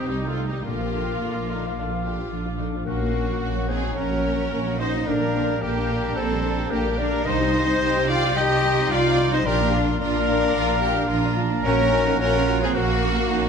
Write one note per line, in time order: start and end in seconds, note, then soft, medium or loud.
0.00 0.68 C3 medium
0.00 0.11 D#3 soft
0.00 0.25 G3 soft
0.00 0.10 C4 medium
0.00 0.11 C4 soft
0.00 0.63 D#4 medium
0.00 0.69 D#4 soft
0.00 0.11 G4 medium
0.00 0.68 G4 soft
0.00 0.68 C5 soft
0.00 0.69 D#5 medium
0.00 0.62 G5 medium
0.00 0.62 D#6 medium
0.00 0.68 D#6 medium
0.08 0.59 C2 medium
0.08 0.29 G3 medium
0.08 0.24 G3 medium
0.08 0.29 D#4 medium
0.08 0.17 D#4 medium
0.08 0.24 D#4 medium
0.08 0.30 G4 medium
0.24 0.38 D#3 soft
0.24 0.52 G3 soft
0.24 0.38 C4 medium
0.24 0.46 F4 medium
0.29 0.47 A3 medium
0.29 0.48 A3 medium
0.29 0.47 F4 medium
0.29 0.46 A4 medium
0.37 0.51 G3 medium
0.37 0.69 C4 soft
0.37 0.52 D#4 medium
0.47 0.66 G3 medium
0.47 0.67 G3 medium
0.47 0.55 D#4 medium
0.47 0.65 D#4 medium
0.47 0.65 G4 medium
0.51 0.66 D#3 medium
0.51 0.69 G3 soft
0.51 0.66 C4 medium
0.64 1.15 A#1 medium
0.64 2.85 A#2 medium
0.64 0.79 D3 medium
0.64 2.32 A#3 medium
0.64 2.29 A#3 medium
0.64 0.79 D4 medium
0.64 2.28 F4 medium
0.64 2.32 F4 medium
0.64 1.21 G4 medium
0.64 2.31 A#4 medium
0.64 2.84 F5 medium
0.64 2.84 D6 medium
0.80 0.94 F3 medium
0.80 2.31 F3 soft
0.80 0.94 F4 medium
0.93 1.07 D3 medium
0.93 1.07 D4 medium
0.93 2.17 D4 soft
1.05 1.20 F3 soft
1.05 1.20 F4 medium
1.05 2.04 F4 soft
1.21 1.70 A#1 medium
1.21 1.34 D3 medium
1.21 1.34 D4 medium
1.21 1.50 F4 medium
1.35 1.49 F3 medium
1.35 1.49 F4 medium
1.35 2.90 D5 medium
1.49 1.63 D3 medium
1.49 1.63 D4 medium
1.49 1.77 D#4 medium
1.49 1.76 F5 medium
1.64 1.77 F3 medium
1.64 1.77 F4 medium
1.76 2.25 A#1 medium
1.76 1.90 D3 medium
1.76 1.90 D4 medium
1.76 1.86 D4 medium
1.76 2.90 F5 medium
1.91 2.05 F3 medium
1.91 2.05 F4 medium
2.03 2.19 D3 medium
2.03 2.19 D4 medium
2.03 2.90 F4 medium
2.03 2.31 G4 medium
2.18 2.32 F3 medium
2.18 2.44 D4 soft
2.18 2.33 F4 soft
2.31 2.81 A#1 medium
2.31 2.45 D3 medium
2.31 2.57 F3 soft
2.31 2.45 D4 medium
2.31 2.59 F4 medium
2.45 2.59 F3 medium
2.45 2.71 D4 soft
2.45 2.60 F4 medium
2.58 2.74 D3 medium
2.58 2.89 F3 soft
2.58 2.74 D4 medium
2.58 2.66 D#4 medium
2.72 2.88 F3 medium
2.72 2.89 D4 soft
2.72 2.88 F4 medium
2.85 3.37 A#1 medium
2.85 5.06 A#2 medium
2.85 3.66 A#3 medium
2.85 2.99 A#3 medium
2.85 3.66 A#3 medium
2.85 3.41 C#4 medium
2.85 3.00 C#4 medium
2.85 3.66 F#4 medium
2.85 3.71 F#4 medium
2.85 3.65 A#4 medium
2.85 4.76 F#5 medium
2.85 4.77 C#6 medium
3.00 3.15 F#3 medium
3.00 3.12 A#3 medium
3.00 4.51 A#3 medium
3.13 3.26 A#3 medium
3.13 3.28 C#4 medium
3.13 4.37 C#4 soft
3.28 3.43 F#3 medium
3.28 3.40 A#3 medium
3.28 4.24 F#4 medium
3.41 3.91 A#1 medium
3.41 3.54 A#3 medium
3.41 3.55 C#4 medium
3.41 3.70 F#4 medium
3.55 3.70 F#3 medium
3.55 3.66 A#3 medium
3.55 5.10 C#5 medium
3.68 3.80 A#3 medium
3.68 3.97 C4 medium
3.68 3.98 C4 medium
3.68 3.83 C#4 medium
3.68 3.98 D#4 medium
3.68 3.98 G#4 medium
3.68 3.81 C5 medium
3.68 3.96 F#5 medium
3.82 3.97 F#3 medium
3.82 3.93 A#3 medium
3.94 4.46 A#1 medium
3.94 4.08 A#3 medium
3.94 4.09 C#4 medium
3.94 4.78 C#4 medium
3.94 4.79 C#4 medium
3.94 4.79 A#4 medium
3.94 4.78 C#5 loud
3.94 5.10 F#5 medium
3.99 4.54 C#4 medium
4.09 4.24 F#3 medium
4.09 4.22 A#3 medium
4.23 4.35 A#3 medium
4.23 4.38 C#4 medium
4.23 5.10 F#4 medium
4.36 4.51 F#3 medium
4.36 4.49 A#3 medium
4.36 4.66 C#4 medium
4.51 5.01 A#1 medium
4.51 4.63 A#3 medium
4.51 4.79 A#3 medium
4.51 4.65 C#4 medium
4.51 5.08 F#4 medium
4.64 4.79 F#3 medium
4.64 4.78 A#3 medium
4.64 4.93 C#4 medium
4.78 4.93 A#3 medium
4.78 5.21 A#3 medium
4.78 4.94 C#4 medium
4.78 5.06 D#4 medium
4.78 5.08 D#4 medium
4.78 4.92 C5 medium
4.78 5.08 C5 medium
4.78 5.08 D#5 medium
4.94 5.08 F#3 medium
4.94 5.05 A#3 medium
4.94 5.10 C#4 medium
5.06 5.57 A#1 medium
5.06 7.29 A#2 medium
5.06 5.20 D3 medium
5.06 5.20 A#3 medium
5.06 5.61 D4 medium
5.06 5.63 D4 medium
5.06 5.16 D4 medium
5.06 5.63 A#4 loud
5.06 5.62 A#4 medium
5.06 5.62 D5 loud
5.06 7.23 G5 medium
5.06 7.22 A#5 medium
5.22 5.36 G3 medium
5.22 6.58 A#3 medium
5.22 5.36 D4 medium
5.35 5.50 D3 medium
5.35 5.50 A#3 medium
5.35 5.62 C4 medium
5.35 5.63 D4 medium
5.50 5.64 G3 medium
5.50 5.63 D4 medium
5.50 6.30 G4 medium
5.61 6.11 A#1 medium
5.61 5.76 D3 medium
5.61 6.17 A#3 medium
5.61 5.76 A#3 medium
5.61 6.17 A#3 medium
5.61 7.24 D4 loud
5.61 6.43 D4 medium
5.61 6.15 G4 medium
5.61 6.17 G4 medium
5.61 6.18 A#4 loud
5.77 5.91 G3 medium
5.77 5.91 D4 medium
5.77 6.04 D5 medium
5.90 6.05 D3 medium
5.90 6.04 A#3 medium
5.90 6.17 G5 medium
6.05 6.18 G3 medium
6.05 6.18 D4 medium
6.05 7.30 D5 medium
6.16 6.65 A#1 medium
6.16 6.31 D3 medium
6.16 6.31 A#3 medium
6.16 6.72 C4 medium
6.16 6.71 C4 medium
6.16 6.72 A4 medium
6.16 6.73 A4 medium
6.16 6.72 C5 loud
6.16 8.22 G5 medium
6.31 6.46 G3 medium
6.31 6.46 D4 medium
6.31 7.81 G4 medium
6.45 6.60 D3 medium
6.45 6.59 A#3 medium
6.45 6.71 D4 medium
6.59 6.73 G3 medium
6.59 6.84 A#3 medium
6.59 6.73 D4 medium
6.70 7.20 A#1 medium
6.70 6.85 D3 medium
6.70 6.99 A#3 medium
6.70 6.80 A#3 medium
6.70 6.86 A#3 medium
6.70 6.99 D4 medium
6.70 6.99 G4 medium
6.70 6.99 A#4 loud
6.85 7.00 G3 medium
6.85 7.12 A#3 medium
6.85 7.00 D4 medium
6.97 7.14 D3 medium
6.97 7.14 A#3 medium
6.97 7.26 D4 medium
6.97 7.29 D4 medium
6.97 7.29 A#4 medium
6.97 7.27 A#4 medium
6.97 7.24 D5 loud
7.13 7.27 G3 medium
7.13 7.29 A#3 medium
7.13 7.27 D4 medium
7.25 7.76 C2 loud
7.25 9.50 C3 medium
7.25 7.39 D#3 medium
7.25 7.39 D#4 medium
7.25 8.09 D#4 loud
7.25 8.10 D#4 loud
7.25 7.54 D#4 medium
7.25 8.09 C5 loud
7.25 8.10 C5 loud
7.25 8.07 D#5 loud
7.25 9.44 G5 loud
7.25 10.58 C6 medium
7.39 7.54 G3 medium
7.39 8.90 G3 medium
7.39 7.54 C4 medium
7.52 7.68 D#3 medium
7.52 8.77 C4 medium
7.52 7.67 D#4 medium
7.52 7.61 F4 medium
7.67 7.82 G3 medium
7.67 7.82 C4 medium
7.67 8.63 D#4 medium
7.80 8.30 C2 medium
7.80 7.94 D#3 medium
7.80 7.94 D#4 medium
7.80 8.51 G4 medium
7.80 8.36 G4 loud
7.95 8.09 G3 medium
7.95 8.09 C4 medium
8.08 8.23 D#3 medium
8.08 8.23 D#4 medium
8.08 8.36 F4 loud
8.08 8.37 F4 loud
8.08 8.35 D5 loud
8.08 8.36 D5 loud
8.08 8.36 F5 loud
8.23 8.37 G3 medium
8.23 8.37 C4 medium
8.23 9.49 G5 medium
8.36 8.85 C2 loud
8.36 8.50 D#3 medium
8.36 9.45 D#4 loud
8.36 8.50 D#4 medium
8.36 8.92 G4 loud
8.36 8.91 G4 loud
8.36 8.93 D#5 loud
8.36 8.91 G5 loud
8.51 8.65 G3 medium
8.51 8.64 C4 medium
8.64 8.78 D#3 medium
8.64 9.49 D#4 medium
8.64 8.78 D#4 medium
8.78 8.92 G3 medium
8.78 9.04 C4 medium
8.78 8.92 C4 medium
8.91 9.40 C2 loud
8.91 9.05 D#3 medium
8.91 9.18 G3 medium
8.91 9.06 D#4 medium
8.91 9.33 F4 loud
8.91 9.32 F4 loud
8.91 9.34 D5 loud
8.91 9.33 D5 loud
8.91 9.32 F5 loud
9.05 9.21 G3 medium
9.05 9.31 C4 medium
9.05 9.20 C4 medium
9.19 9.34 D#3 medium
9.19 9.49 G3 medium
9.19 9.34 D#4 medium
9.32 9.47 G3 medium
9.32 9.49 C4 medium
9.32 9.48 C4 medium
9.32 9.46 D#4 loud
9.32 9.47 D#4 loud
9.32 9.48 C5 loud
9.32 9.47 C5 loud
9.32 9.47 D#5 loud
9.45 9.94 A#1 loud
9.45 11.65 A#2 medium
9.45 9.99 D4 loud
9.45 10.00 D4 loud
9.45 9.60 D4 medium
9.45 9.61 F4 medium
9.45 9.73 G4 loud
9.45 10.00 A#4 loud
9.45 9.82 A#4 loud
9.45 9.82 D5 loud
9.45 11.68 F5 loud
9.59 11.11 F3 medium
9.59 9.75 A#3 medium
9.59 9.75 D4 medium
9.73 10.97 D4 medium
9.73 9.88 D4 medium
9.73 9.99 F4 loud
9.73 9.89 F4 medium
9.86 10.02 A#3 medium
9.86 10.01 D4 medium
9.86 10.83 F4 medium
10.00 10.50 A#1 loud
10.00 11.35 D4 loud
10.00 11.36 D4 loud
10.00 10.15 D4 medium
10.00 10.28 F4 loud
10.00 10.15 F4 medium
10.00 10.69 A#4 medium
10.00 11.34 A#4 loud
10.00 11.36 A#4 loud
10.00 11.35 D5 loud
10.15 10.30 A#3 medium
10.15 10.29 D4 medium
10.15 11.68 D5 medium
10.28 10.36 D4 loud
10.28 10.41 D4 medium
10.28 10.44 F4 medium
10.28 10.55 F5 medium
10.42 10.56 A#3 medium
10.42 10.54 D4 medium
10.42 12.63 A#5 medium
10.55 11.04 A#1 loud
10.55 10.67 D4 medium
10.55 10.83 F4 loud
10.55 10.69 F4 medium
10.55 13.49 A#5 loud
10.68 10.83 A#3 medium
10.68 10.80 D4 medium
10.68 12.21 A#4 medium
10.81 10.94 D4 medium
10.81 10.97 F4 medium
10.81 11.69 F4 medium
10.81 11.10 G4 loud
10.95 11.10 A#3 medium
10.95 11.09 D4 medium
10.95 11.24 D4 medium
11.09 11.59 A#1 loud
11.09 11.38 F3 medium
11.09 11.23 D4 medium
11.09 11.37 F4 loud
11.09 11.23 F4 medium
11.24 11.39 A#3 medium
11.24 11.36 D4 medium
11.24 11.51 D4 medium
11.37 11.69 F3 medium
11.37 11.66 D4 loud
11.37 11.49 D4 medium
11.37 11.52 F4 medium
11.51 11.66 A#3 medium
11.51 11.66 D4 medium
11.51 11.68 D4 medium
11.63 12.15 A#1 loud
11.63 13.49 A#2 loud
11.63 11.92 C#4 loud
11.63 11.78 C#4 medium
11.63 12.17 C#4 loud
11.63 11.79 F#4 medium
11.63 12.17 A#4 loud
11.63 12.18 A#4 loud
11.63 12.17 C#5 loud
11.63 13.49 F#5 loud
11.78 13.32 F#3 medium
11.78 11.93 A#3 medium
11.78 11.93 A#4 medium
11.91 13.18 A#3 medium
11.91 12.07 C#4 medium
11.91 12.20 D#4 loud
11.91 12.07 F#4 medium
12.07 12.21 A#3 medium
12.07 13.49 C#4 medium
12.07 12.21 A#4 medium
12.18 12.69 A#1 loud
12.18 12.62 C#4 loud
12.18 12.34 C#4 medium
12.18 12.62 C#4 loud
12.18 12.76 F4 loud
12.18 12.34 F#4 medium
12.18 12.61 A#4 loud
12.18 12.62 A#4 loud
12.18 12.65 C#5 loud
12.34 12.49 A#3 medium
12.34 12.49 A#4 medium
12.48 12.63 C#4 medium
12.48 12.63 F#4 medium
12.48 12.76 F#5 medium
12.61 12.76 A#3 medium
12.61 12.68 C4 loud
12.61 12.77 C4 loud
12.61 12.74 G#4 loud
12.61 12.69 G#4 loud
12.61 12.77 A#4 medium
12.61 12.77 C5 loud
12.75 13.25 A#1 loud
12.75 13.49 A#3 loud
12.75 12.90 C#4 medium
12.75 13.49 F#4 loud
12.75 13.31 F#4 loud
12.75 12.90 F#4 medium
12.75 13.49 F#4 loud
12.75 13.49 A#4 loud
12.75 13.49 F#5 medium
12.90 13.05 A#3 medium
12.90 13.05 A#4 medium
12.90 13.49 A#4 medium
13.05 13.19 C#4 medium
13.05 13.19 F#4 medium
13.18 13.33 A#3 medium
13.18 13.46 A#3 medium
13.18 13.32 A#4 medium
13.31 13.49 A#1 medium
13.31 13.49 F#3 medium
13.31 13.45 C#4 medium
13.31 13.49 D#4 loud
13.31 13.45 F#4 medium